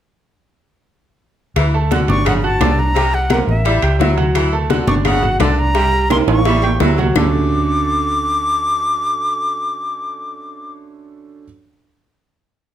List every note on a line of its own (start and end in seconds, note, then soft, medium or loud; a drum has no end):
1.56 2.05 D2 medium
1.56 1.75 E3 medium
1.56 high bongo medium
1.56 high conga soft
1.56 high timbale medium
1.56 claves medium
1.74 1.88 A3 medium
1.74 1.88 A4 medium
1.74 1.89 A5 medium
1.74 high conga soft
1.91 2.10 D3 medium
1.91 2.06 F#4 medium
1.91 2.06 F#5 medium
1.91 2.06 F#6 medium
1.91 high bongo medium
1.91 high conga medium
1.91 high timbale medium
2.08 2.57 G1 medium
2.08 2.37 D4 medium
2.08 2.37 D5 medium
2.08 2.25 C#6 medium
2.08 2.38 D6 medium
2.08 high conga medium
2.08 high timbale medium
2.25 2.44 C#3 medium
2.25 2.34 F#5 loud
2.25 high bongo medium
2.25 high conga soft
2.25 low conga medium
2.25 high timbale medium
2.25 claves medium
2.43 2.58 F#4 medium
2.43 2.58 F#5 medium
2.43 2.81 A5 medium
2.43 2.58 F#6 medium
2.43 high conga soft
2.60 3.42 C2 medium
2.60 2.79 D3 medium
2.60 2.89 D4 medium
2.60 2.90 D5 medium
2.60 2.90 D6 medium
2.60 high bongo medium
2.60 low bongo medium
2.60 high conga medium
2.60 high timbale medium
2.60 low timbale medium
2.60 claves medium
2.79 3.16 A#5 medium
2.95 3.14 C3 medium
2.95 3.24 G3 medium
2.95 3.25 G4 medium
2.95 3.25 G5 medium
2.95 high bongo medium
2.95 high conga soft
2.95 high timbale medium
3.13 3.49 F#5 medium
3.13 high bongo soft
3.13 high conga soft
3.30 3.49 C3 medium
3.30 3.59 A#3 medium
3.30 3.59 A#4 medium
3.30 3.60 A#5 medium
3.30 high bongo medium
3.30 high conga loud
3.30 high timbale medium
3.30 claves medium
3.47 3.80 A1 medium
3.47 4.14 E5 medium
3.47 high bongo soft
3.65 3.84 G3 medium
3.65 3.80 E4 medium
3.65 3.80 E5 medium
3.65 3.80 E6 medium
3.65 high bongo medium
3.65 high conga soft
3.65 high timbale medium
3.82 3.99 C#2 medium
3.82 3.97 G4 medium
3.82 3.97 G5 medium
3.82 3.98 G6 medium
3.82 high bongo soft
3.82 high conga soft
3.82 high timbale medium
3.82 claves medium
4.00 4.82 D2 medium
4.00 4.18 F#3 medium
4.00 4.15 E4 medium
4.00 4.15 E5 medium
4.00 4.15 E6 medium
4.00 high bongo medium
4.00 low bongo medium
4.00 low timbale medium
4.17 4.46 F#3 medium
4.17 4.46 F#4 medium
4.17 4.46 F#5 medium
4.17 high conga medium
4.17 high timbale medium
4.35 4.54 E3 medium
4.35 high bongo medium
4.35 high conga soft
4.35 high timbale medium
4.35 claves medium
4.52 4.67 A3 medium
4.52 4.67 A4 medium
4.52 4.67 A5 medium
4.52 high conga soft
4.70 4.89 D3 medium
4.70 4.84 F#4 medium
4.70 4.85 F#5 medium
4.70 4.85 F#6 medium
4.70 high bongo medium
4.70 high conga loud
4.70 high timbale medium
4.87 5.36 G1 medium
4.87 5.16 D4 medium
4.87 5.16 D5 medium
4.87 4.94 C#6 medium
4.87 5.17 D6 medium
4.87 high conga loud
4.87 high timbale medium
5.05 5.24 C#3 medium
5.05 5.38 F#5 loud
5.05 high bongo medium
5.05 high conga soft
5.05 low conga medium
5.05 high timbale medium
5.05 claves medium
5.22 5.37 F#4 medium
5.22 5.37 F#5 medium
5.22 5.37 F#6 medium
5.22 high conga soft
5.22 low conga medium
5.39 6.22 C2 medium
5.39 5.59 D3 medium
5.39 5.69 D4 medium
5.39 5.69 D5 medium
5.39 5.61 A5 medium
5.39 5.69 D6 medium
5.39 high bongo medium
5.39 low bongo medium
5.39 high conga medium
5.39 high timbale medium
5.39 claves medium
5.59 6.11 A#5 loud
5.74 5.93 C3 medium
5.74 6.04 G3 medium
5.74 6.04 G4 medium
5.74 6.05 G5 medium
5.74 high bongo medium
5.74 high timbale medium
5.93 high bongo soft
5.93 high conga soft
6.09 6.28 C3 medium
6.09 6.39 A#3 medium
6.09 6.39 A#4 medium
6.09 6.40 A#5 medium
6.09 6.17 C6 medium
6.09 high bongo medium
6.09 high conga medium
6.09 high timbale medium
6.09 claves medium
6.27 6.77 A1 medium
6.27 6.78 C#6 medium
6.27 high bongo soft
6.27 high timbale loud
6.45 6.64 G3 medium
6.45 6.60 E4 medium
6.45 6.60 E5 medium
6.45 6.60 E6 medium
6.45 high bongo medium
6.45 high conga soft
6.45 low timbale medium
6.62 6.78 G4 medium
6.62 6.78 G5 medium
6.62 6.78 G6 medium
6.62 high bongo soft
6.62 high conga soft
6.62 low timbale medium
6.62 claves medium
6.80 7.12 D2 medium
6.80 6.99 F#3 medium
6.80 6.95 E4 medium
6.80 6.95 E5 medium
6.80 6.96 E6 medium
6.80 high bongo medium
6.80 low bongo medium
6.80 low timbale loud
6.98 7.13 F#3 medium
6.98 7.13 F#4 medium
6.98 7.13 F#5 medium
6.98 high conga medium
6.98 low timbale medium
7.15 11.44 D2 medium
7.15 11.44 D3 medium
7.15 7.28 D3 medium
7.15 11.44 A3 medium
7.15 11.44 C#4 medium
7.15 11.44 D4 medium
7.15 11.44 F#4 medium
7.15 11.44 A4 medium
7.15 10.74 D6 loud
7.15 low bongo loud
7.15 low conga medium
7.15 low timbale medium
7.15 claves loud